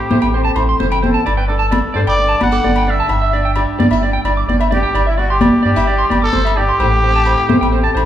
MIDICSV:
0, 0, Header, 1, 7, 480
1, 0, Start_track
1, 0, Tempo, 462250
1, 1303, Time_signature, 4, 2, 24, 8
1, 8363, End_track
2, 0, Start_track
2, 0, Title_t, "Clean electric guitar"
2, 0, Program_c, 0, 27
2, 113, Note_on_c, 0, 72, 77
2, 177, Note_off_c, 0, 72, 0
2, 228, Note_on_c, 0, 79, 72
2, 290, Note_off_c, 0, 79, 0
2, 354, Note_on_c, 0, 72, 62
2, 417, Note_off_c, 0, 72, 0
2, 463, Note_on_c, 0, 81, 81
2, 526, Note_off_c, 0, 81, 0
2, 578, Note_on_c, 0, 72, 69
2, 645, Note_off_c, 0, 72, 0
2, 716, Note_on_c, 0, 84, 69
2, 775, Note_off_c, 0, 84, 0
2, 829, Note_on_c, 0, 72, 80
2, 894, Note_off_c, 0, 72, 0
2, 954, Note_on_c, 0, 79, 66
2, 1014, Note_off_c, 0, 79, 0
2, 1065, Note_on_c, 0, 72, 62
2, 1130, Note_off_c, 0, 72, 0
2, 1185, Note_on_c, 0, 81, 82
2, 1247, Note_off_c, 0, 81, 0
2, 1307, Note_on_c, 0, 74, 81
2, 1372, Note_off_c, 0, 74, 0
2, 1427, Note_on_c, 0, 79, 68
2, 1488, Note_off_c, 0, 79, 0
2, 1539, Note_on_c, 0, 74, 58
2, 1605, Note_off_c, 0, 74, 0
2, 1653, Note_on_c, 0, 81, 86
2, 1718, Note_off_c, 0, 81, 0
2, 1778, Note_on_c, 0, 74, 63
2, 1845, Note_off_c, 0, 74, 0
2, 2014, Note_on_c, 0, 74, 85
2, 2082, Note_off_c, 0, 74, 0
2, 2150, Note_on_c, 0, 79, 69
2, 2211, Note_off_c, 0, 79, 0
2, 2259, Note_on_c, 0, 74, 66
2, 2325, Note_off_c, 0, 74, 0
2, 2374, Note_on_c, 0, 81, 85
2, 2439, Note_off_c, 0, 81, 0
2, 2489, Note_on_c, 0, 74, 61
2, 2559, Note_off_c, 0, 74, 0
2, 2624, Note_on_c, 0, 86, 73
2, 2686, Note_off_c, 0, 86, 0
2, 2745, Note_on_c, 0, 74, 78
2, 2810, Note_off_c, 0, 74, 0
2, 2881, Note_on_c, 0, 79, 69
2, 2938, Note_off_c, 0, 79, 0
2, 2989, Note_on_c, 0, 74, 60
2, 3052, Note_off_c, 0, 74, 0
2, 3112, Note_on_c, 0, 81, 88
2, 3172, Note_off_c, 0, 81, 0
2, 3340, Note_on_c, 0, 76, 68
2, 3403, Note_off_c, 0, 76, 0
2, 3460, Note_on_c, 0, 74, 67
2, 3526, Note_off_c, 0, 74, 0
2, 3584, Note_on_c, 0, 79, 81
2, 3645, Note_off_c, 0, 79, 0
2, 3699, Note_on_c, 0, 74, 60
2, 3765, Note_off_c, 0, 74, 0
2, 3941, Note_on_c, 0, 74, 86
2, 4007, Note_off_c, 0, 74, 0
2, 4063, Note_on_c, 0, 76, 65
2, 4125, Note_off_c, 0, 76, 0
2, 4183, Note_on_c, 0, 74, 64
2, 4249, Note_off_c, 0, 74, 0
2, 4291, Note_on_c, 0, 79, 83
2, 4356, Note_off_c, 0, 79, 0
2, 4416, Note_on_c, 0, 74, 71
2, 4483, Note_off_c, 0, 74, 0
2, 4540, Note_on_c, 0, 86, 72
2, 4603, Note_off_c, 0, 86, 0
2, 4658, Note_on_c, 0, 74, 86
2, 4725, Note_off_c, 0, 74, 0
2, 4780, Note_on_c, 0, 76, 65
2, 4843, Note_off_c, 0, 76, 0
2, 4889, Note_on_c, 0, 74, 70
2, 4958, Note_off_c, 0, 74, 0
2, 5014, Note_on_c, 0, 79, 87
2, 5078, Note_off_c, 0, 79, 0
2, 5134, Note_on_c, 0, 74, 84
2, 5202, Note_off_c, 0, 74, 0
2, 5260, Note_on_c, 0, 76, 72
2, 5323, Note_off_c, 0, 76, 0
2, 5375, Note_on_c, 0, 74, 68
2, 5442, Note_off_c, 0, 74, 0
2, 5505, Note_on_c, 0, 84, 84
2, 5567, Note_off_c, 0, 84, 0
2, 5616, Note_on_c, 0, 74, 62
2, 5684, Note_off_c, 0, 74, 0
2, 5842, Note_on_c, 0, 74, 86
2, 5913, Note_off_c, 0, 74, 0
2, 5983, Note_on_c, 0, 76, 76
2, 6045, Note_off_c, 0, 76, 0
2, 6097, Note_on_c, 0, 74, 69
2, 6164, Note_off_c, 0, 74, 0
2, 6215, Note_on_c, 0, 84, 89
2, 6279, Note_off_c, 0, 84, 0
2, 6333, Note_on_c, 0, 74, 66
2, 6402, Note_off_c, 0, 74, 0
2, 6458, Note_on_c, 0, 86, 71
2, 6522, Note_off_c, 0, 86, 0
2, 6572, Note_on_c, 0, 72, 86
2, 6640, Note_off_c, 0, 72, 0
2, 6696, Note_on_c, 0, 76, 66
2, 6760, Note_off_c, 0, 76, 0
2, 6820, Note_on_c, 0, 74, 66
2, 6887, Note_off_c, 0, 74, 0
2, 6944, Note_on_c, 0, 84, 82
2, 7006, Note_off_c, 0, 84, 0
2, 7060, Note_on_c, 0, 72, 88
2, 7127, Note_off_c, 0, 72, 0
2, 7308, Note_on_c, 0, 72, 63
2, 7372, Note_off_c, 0, 72, 0
2, 7431, Note_on_c, 0, 81, 84
2, 7492, Note_off_c, 0, 81, 0
2, 7549, Note_on_c, 0, 72, 60
2, 7613, Note_off_c, 0, 72, 0
2, 7776, Note_on_c, 0, 72, 89
2, 7844, Note_off_c, 0, 72, 0
2, 7903, Note_on_c, 0, 79, 71
2, 7965, Note_off_c, 0, 79, 0
2, 8019, Note_on_c, 0, 72, 61
2, 8086, Note_off_c, 0, 72, 0
2, 8138, Note_on_c, 0, 81, 85
2, 8202, Note_off_c, 0, 81, 0
2, 8250, Note_on_c, 0, 72, 65
2, 8320, Note_off_c, 0, 72, 0
2, 8363, End_track
3, 0, Start_track
3, 0, Title_t, "Trumpet"
3, 0, Program_c, 1, 56
3, 0, Note_on_c, 1, 67, 85
3, 786, Note_off_c, 1, 67, 0
3, 1076, Note_on_c, 1, 69, 76
3, 1409, Note_off_c, 1, 69, 0
3, 1417, Note_on_c, 1, 71, 77
3, 1529, Note_off_c, 1, 71, 0
3, 1543, Note_on_c, 1, 69, 80
3, 1989, Note_off_c, 1, 69, 0
3, 2032, Note_on_c, 1, 72, 78
3, 2085, Note_off_c, 1, 72, 0
3, 2164, Note_on_c, 1, 74, 98
3, 2486, Note_off_c, 1, 74, 0
3, 2518, Note_on_c, 1, 78, 94
3, 3009, Note_on_c, 1, 76, 91
3, 3024, Note_off_c, 1, 78, 0
3, 3715, Note_off_c, 1, 76, 0
3, 4903, Note_on_c, 1, 67, 92
3, 5242, Note_off_c, 1, 67, 0
3, 5276, Note_on_c, 1, 64, 74
3, 5378, Note_on_c, 1, 66, 88
3, 5394, Note_off_c, 1, 64, 0
3, 5508, Note_on_c, 1, 67, 92
3, 5524, Note_off_c, 1, 66, 0
3, 5858, Note_off_c, 1, 67, 0
3, 5864, Note_on_c, 1, 67, 95
3, 6426, Note_off_c, 1, 67, 0
3, 6471, Note_on_c, 1, 69, 113
3, 6820, Note_on_c, 1, 67, 109
3, 6835, Note_off_c, 1, 69, 0
3, 8363, Note_off_c, 1, 67, 0
3, 8363, End_track
4, 0, Start_track
4, 0, Title_t, "Nylon-string guitar"
4, 0, Program_c, 2, 24
4, 0, Note_on_c, 2, 45, 75
4, 0, Note_on_c, 2, 60, 53
4, 0, Note_on_c, 2, 64, 55
4, 111, Note_off_c, 2, 64, 0
4, 122, Note_on_c, 2, 57, 62
4, 128, Note_on_c, 2, 64, 54
4, 353, Note_off_c, 2, 60, 0
4, 368, Note_on_c, 2, 60, 61
4, 594, Note_off_c, 2, 64, 0
4, 608, Note_on_c, 2, 64, 54
4, 834, Note_on_c, 2, 52, 56
4, 1064, Note_off_c, 2, 60, 0
4, 1076, Note_on_c, 2, 60, 55
4, 1276, Note_off_c, 2, 45, 0
4, 1281, Note_off_c, 2, 52, 0
4, 1282, Note_off_c, 2, 60, 0
4, 1284, Note_off_c, 2, 57, 0
4, 1287, Note_off_c, 2, 64, 0
4, 1310, Note_on_c, 2, 43, 68
4, 1550, Note_on_c, 2, 62, 53
4, 1790, Note_off_c, 2, 62, 0
4, 1794, Note_on_c, 2, 62, 57
4, 2019, Note_on_c, 2, 55, 59
4, 2029, Note_on_c, 2, 69, 56
4, 2268, Note_off_c, 2, 62, 0
4, 2273, Note_on_c, 2, 62, 60
4, 2498, Note_off_c, 2, 69, 0
4, 2502, Note_on_c, 2, 67, 64
4, 2615, Note_off_c, 2, 67, 0
4, 2615, Note_on_c, 2, 69, 51
4, 2733, Note_on_c, 2, 50, 61
4, 2974, Note_off_c, 2, 62, 0
4, 2978, Note_on_c, 2, 62, 56
4, 3190, Note_off_c, 2, 50, 0
4, 3201, Note_off_c, 2, 43, 0
4, 3205, Note_on_c, 2, 43, 70
4, 3216, Note_off_c, 2, 69, 0
4, 3461, Note_off_c, 2, 62, 0
4, 3465, Note_on_c, 2, 62, 55
4, 3703, Note_on_c, 2, 67, 62
4, 3924, Note_off_c, 2, 55, 0
4, 3928, Note_on_c, 2, 55, 60
4, 3934, Note_off_c, 2, 62, 0
4, 3934, Note_on_c, 2, 62, 49
4, 4075, Note_off_c, 2, 62, 0
4, 4075, Note_on_c, 2, 64, 52
4, 4194, Note_on_c, 2, 62, 55
4, 4423, Note_off_c, 2, 64, 0
4, 4436, Note_on_c, 2, 64, 54
4, 4653, Note_off_c, 2, 43, 0
4, 4668, Note_on_c, 2, 43, 59
4, 4900, Note_off_c, 2, 62, 0
4, 4912, Note_on_c, 2, 62, 57
4, 5119, Note_off_c, 2, 62, 0
4, 5128, Note_off_c, 2, 43, 0
4, 5140, Note_on_c, 2, 43, 72
4, 5390, Note_on_c, 2, 62, 59
4, 5421, Note_off_c, 2, 64, 0
4, 5646, Note_on_c, 2, 64, 53
4, 5863, Note_off_c, 2, 62, 0
4, 5869, Note_off_c, 2, 55, 0
4, 5872, Note_off_c, 2, 64, 0
4, 5873, Note_on_c, 2, 55, 60
4, 5877, Note_on_c, 2, 62, 57
4, 5981, Note_off_c, 2, 62, 0
4, 5981, Note_on_c, 2, 64, 47
4, 6118, Note_on_c, 2, 62, 59
4, 6340, Note_off_c, 2, 64, 0
4, 6353, Note_on_c, 2, 64, 57
4, 6817, Note_off_c, 2, 43, 0
4, 6830, Note_on_c, 2, 43, 64
4, 7040, Note_off_c, 2, 64, 0
4, 7043, Note_off_c, 2, 62, 0
4, 7066, Note_off_c, 2, 43, 0
4, 7075, Note_on_c, 2, 45, 72
4, 7106, Note_off_c, 2, 55, 0
4, 7106, Note_off_c, 2, 67, 0
4, 7314, Note_on_c, 2, 60, 54
4, 7544, Note_on_c, 2, 64, 55
4, 7770, Note_off_c, 2, 64, 0
4, 7773, Note_on_c, 2, 57, 63
4, 7782, Note_on_c, 2, 64, 56
4, 8009, Note_off_c, 2, 60, 0
4, 8021, Note_on_c, 2, 60, 59
4, 8263, Note_off_c, 2, 64, 0
4, 8279, Note_on_c, 2, 64, 56
4, 8363, Note_off_c, 2, 45, 0
4, 8363, Note_off_c, 2, 57, 0
4, 8363, Note_off_c, 2, 60, 0
4, 8363, Note_off_c, 2, 64, 0
4, 8363, End_track
5, 0, Start_track
5, 0, Title_t, "Sub bass"
5, 0, Program_c, 3, 38
5, 115, Note_on_c, 3, 45, 84
5, 211, Note_off_c, 3, 45, 0
5, 240, Note_on_c, 3, 33, 80
5, 521, Note_off_c, 3, 33, 0
5, 581, Note_on_c, 3, 33, 93
5, 775, Note_off_c, 3, 33, 0
5, 834, Note_on_c, 3, 30, 97
5, 1214, Note_off_c, 3, 30, 0
5, 1320, Note_on_c, 3, 31, 101
5, 1890, Note_off_c, 3, 31, 0
5, 2028, Note_on_c, 3, 43, 89
5, 2125, Note_off_c, 3, 43, 0
5, 2154, Note_on_c, 3, 31, 88
5, 2436, Note_off_c, 3, 31, 0
5, 2508, Note_on_c, 3, 31, 90
5, 2698, Note_off_c, 3, 31, 0
5, 2746, Note_on_c, 3, 31, 97
5, 3129, Note_off_c, 3, 31, 0
5, 3218, Note_on_c, 3, 31, 91
5, 3796, Note_off_c, 3, 31, 0
5, 3936, Note_on_c, 3, 43, 87
5, 4038, Note_off_c, 3, 43, 0
5, 4054, Note_on_c, 3, 31, 82
5, 4344, Note_off_c, 3, 31, 0
5, 4407, Note_on_c, 3, 31, 86
5, 4605, Note_off_c, 3, 31, 0
5, 4644, Note_on_c, 3, 31, 102
5, 5036, Note_off_c, 3, 31, 0
5, 5136, Note_on_c, 3, 31, 100
5, 5716, Note_off_c, 3, 31, 0
5, 5869, Note_on_c, 3, 43, 89
5, 5966, Note_off_c, 3, 43, 0
5, 5987, Note_on_c, 3, 31, 89
5, 6272, Note_off_c, 3, 31, 0
5, 6345, Note_on_c, 3, 31, 100
5, 6536, Note_off_c, 3, 31, 0
5, 6590, Note_on_c, 3, 31, 100
5, 6972, Note_off_c, 3, 31, 0
5, 7060, Note_on_c, 3, 33, 97
5, 7638, Note_off_c, 3, 33, 0
5, 7779, Note_on_c, 3, 45, 86
5, 7880, Note_off_c, 3, 45, 0
5, 7905, Note_on_c, 3, 33, 91
5, 8191, Note_off_c, 3, 33, 0
5, 8257, Note_on_c, 3, 33, 94
5, 8363, Note_off_c, 3, 33, 0
5, 8363, End_track
6, 0, Start_track
6, 0, Title_t, "Muted clean electric guitar strokes"
6, 3217, Note_on_c, 9, 29, 83
6, 3321, Note_off_c, 9, 29, 0
6, 7182, Note_on_c, 9, 29, 71
6, 7286, Note_off_c, 9, 29, 0
6, 8363, End_track
7, 0, Start_track
7, 0, Title_t, "Drums"
7, 111, Note_on_c, 9, 63, 81
7, 215, Note_off_c, 9, 63, 0
7, 227, Note_on_c, 9, 68, 58
7, 331, Note_off_c, 9, 68, 0
7, 352, Note_on_c, 9, 62, 26
7, 455, Note_off_c, 9, 62, 0
7, 581, Note_on_c, 9, 68, 62
7, 685, Note_off_c, 9, 68, 0
7, 832, Note_on_c, 9, 63, 70
7, 936, Note_off_c, 9, 63, 0
7, 952, Note_on_c, 9, 68, 70
7, 1056, Note_off_c, 9, 68, 0
7, 1076, Note_on_c, 9, 62, 27
7, 1076, Note_on_c, 9, 63, 66
7, 1180, Note_off_c, 9, 62, 0
7, 1180, Note_off_c, 9, 63, 0
7, 1315, Note_on_c, 9, 68, 59
7, 1317, Note_on_c, 9, 62, 28
7, 1418, Note_off_c, 9, 68, 0
7, 1421, Note_off_c, 9, 62, 0
7, 1553, Note_on_c, 9, 62, 29
7, 1656, Note_off_c, 9, 62, 0
7, 1786, Note_on_c, 9, 68, 63
7, 1792, Note_on_c, 9, 63, 85
7, 1890, Note_off_c, 9, 68, 0
7, 1896, Note_off_c, 9, 63, 0
7, 2153, Note_on_c, 9, 68, 60
7, 2257, Note_off_c, 9, 68, 0
7, 2278, Note_on_c, 9, 62, 25
7, 2382, Note_off_c, 9, 62, 0
7, 2500, Note_on_c, 9, 68, 62
7, 2502, Note_on_c, 9, 63, 65
7, 2604, Note_off_c, 9, 68, 0
7, 2606, Note_off_c, 9, 63, 0
7, 2747, Note_on_c, 9, 63, 61
7, 2851, Note_off_c, 9, 63, 0
7, 2864, Note_on_c, 9, 68, 65
7, 2968, Note_off_c, 9, 68, 0
7, 2990, Note_on_c, 9, 62, 23
7, 3093, Note_off_c, 9, 62, 0
7, 3212, Note_on_c, 9, 68, 61
7, 3231, Note_on_c, 9, 62, 25
7, 3316, Note_off_c, 9, 68, 0
7, 3335, Note_off_c, 9, 62, 0
7, 3464, Note_on_c, 9, 62, 25
7, 3568, Note_off_c, 9, 62, 0
7, 3692, Note_on_c, 9, 68, 67
7, 3796, Note_off_c, 9, 68, 0
7, 3946, Note_on_c, 9, 63, 82
7, 4049, Note_off_c, 9, 63, 0
7, 4057, Note_on_c, 9, 68, 57
7, 4161, Note_off_c, 9, 68, 0
7, 4179, Note_on_c, 9, 62, 27
7, 4283, Note_off_c, 9, 62, 0
7, 4414, Note_on_c, 9, 68, 65
7, 4517, Note_off_c, 9, 68, 0
7, 4667, Note_on_c, 9, 63, 70
7, 4771, Note_off_c, 9, 63, 0
7, 4784, Note_on_c, 9, 68, 62
7, 4888, Note_off_c, 9, 68, 0
7, 4904, Note_on_c, 9, 62, 28
7, 4904, Note_on_c, 9, 63, 66
7, 5008, Note_off_c, 9, 62, 0
7, 5008, Note_off_c, 9, 63, 0
7, 5143, Note_on_c, 9, 62, 30
7, 5143, Note_on_c, 9, 68, 63
7, 5247, Note_off_c, 9, 62, 0
7, 5247, Note_off_c, 9, 68, 0
7, 5388, Note_on_c, 9, 62, 30
7, 5491, Note_off_c, 9, 62, 0
7, 5616, Note_on_c, 9, 63, 96
7, 5622, Note_on_c, 9, 68, 70
7, 5720, Note_off_c, 9, 63, 0
7, 5726, Note_off_c, 9, 68, 0
7, 5994, Note_on_c, 9, 68, 61
7, 6098, Note_off_c, 9, 68, 0
7, 6099, Note_on_c, 9, 62, 27
7, 6203, Note_off_c, 9, 62, 0
7, 6339, Note_on_c, 9, 63, 70
7, 6349, Note_on_c, 9, 68, 61
7, 6443, Note_off_c, 9, 63, 0
7, 6453, Note_off_c, 9, 68, 0
7, 6572, Note_on_c, 9, 63, 72
7, 6676, Note_off_c, 9, 63, 0
7, 6716, Note_on_c, 9, 68, 64
7, 6820, Note_off_c, 9, 68, 0
7, 6820, Note_on_c, 9, 62, 27
7, 6924, Note_off_c, 9, 62, 0
7, 7061, Note_on_c, 9, 68, 60
7, 7068, Note_on_c, 9, 62, 29
7, 7165, Note_off_c, 9, 68, 0
7, 7172, Note_off_c, 9, 62, 0
7, 7305, Note_on_c, 9, 62, 31
7, 7409, Note_off_c, 9, 62, 0
7, 7541, Note_on_c, 9, 68, 69
7, 7645, Note_off_c, 9, 68, 0
7, 7784, Note_on_c, 9, 63, 91
7, 7888, Note_off_c, 9, 63, 0
7, 7920, Note_on_c, 9, 68, 59
7, 8024, Note_off_c, 9, 68, 0
7, 8037, Note_on_c, 9, 62, 25
7, 8141, Note_off_c, 9, 62, 0
7, 8275, Note_on_c, 9, 68, 69
7, 8363, Note_off_c, 9, 68, 0
7, 8363, End_track
0, 0, End_of_file